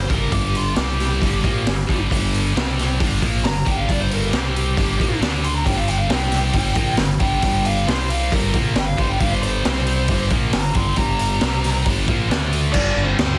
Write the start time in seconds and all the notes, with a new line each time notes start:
0.08 G1 G2 D3 G3 A#4, kick, open hi-hat
0.32 G1 G2 D3 G3 G4, kick, open hi-hat
0.55 F4, open hi-hat
0.76 C2 C3 G3 C4 G4, snare, open hi-hat
1.00 snare, open hi-hat
1.20 G1 G2 D3 G3, kick, open hi-hat
1.42 A#1 A#2 F3 A#3, kick, open hi-hat
1.66 G1 G2 D3, snare, open hi-hat
1.89 G1 G2 D3 G3, kick, open hi-hat
2.10 G1 G2 D3 G3, kick, open hi-hat
2.34 open hi-hat
2.55 C2 C3 G3 C4, snare, open hi-hat
2.79 snare, open hi-hat
2.99 G1 G2 D3 G3, kick, open hi-hat
3.22 A#1 A#2 F3 A#3, kick, open hi-hat
3.43 G1 G2 D3 A#5, snare, open hi-hat
3.65 G1 G2 D3 G3 G5, kick, open hi-hat
3.77 F5
3.88 G1 G2 D3 G3 D5, kick, open hi-hat
4.01 C5
4.11 A#4, open hi-hat
4.32 C2 C3 G3 C4 G4, snare, open hi-hat
4.56 open hi-hat
4.76 G1 G2 D3 G3, kick, open hi-hat
4.99 A#1 A#2 F3 A#3, kick, open hi-hat
5.21 D2 D3 A3 D4, snare, open hi-hat
5.44 C6, open hi-hat
5.55 A#5
5.65 G1 G2 D3 G3 G5, kick, open hi-hat
5.77 F5
5.88 G5, open hi-hat
5.98 F5
6.08 C2 C3 G3 C4 G5, snare, open hi-hat
6.32 snare, open hi-hat
6.52 G1 G2 D3 G3, kick, open hi-hat
6.74 A#1 A#2 F3 A#3, kick, open hi-hat
6.96 G1 G2 D3, snare, open hi-hat
7.19 G1 G2 D3 G3 G5, kick, open hi-hat
7.41 G1 G2 D3 G3, kick, open hi-hat
7.65 F5, open hi-hat
7.86 C2 C3 G3 C4 C5, snare, open hi-hat
8.10 F5, open hi-hat
8.32 G1 G2 D3 G3 A#4, kick, open hi-hat
8.54 A#1 A#2 F3 A#3, kick, open hi-hat
8.75 G1 G2 D3 G5, snare, open hi-hat
8.86 F5
8.97 G1 G2 D3 G3 C5, kick, open hi-hat
9.10 G5
9.19 G1 G2 D3 G3 F5, kick, open hi-hat
9.31 C5
9.43 C5, open hi-hat
9.65 C2 C3 G3 C4, snare, open hi-hat
9.86 open hi-hat
10.08 G1 G2 D3 G3, kick, open hi-hat
10.30 A#1 A#2 F3 A#3, kick, open hi-hat
10.53 G1 G2 D3 F5 A#5, snare, open hi-hat
10.75 G1 G2 D3 G3 G5 C6, kick, open hi-hat
10.96 G1 G2 D3 G3 A#5, kick, open hi-hat
11.19 open hi-hat
11.41 C2 C3 G3 C4, snare, open hi-hat
11.64 snare, open hi-hat
11.86 G1 G2 D3 G3, kick, open hi-hat
12.08 A#1 A#2 F3 A#3, kick, open hi-hat
12.29 D2 D3 A3 D4, snare, open hi-hat
12.53 open hi-hat
12.72 G1 G2 D3 G3 D4 D5, kick, crash
12.96 G1
13.04 C4 C5
13.19 D2, snare, crash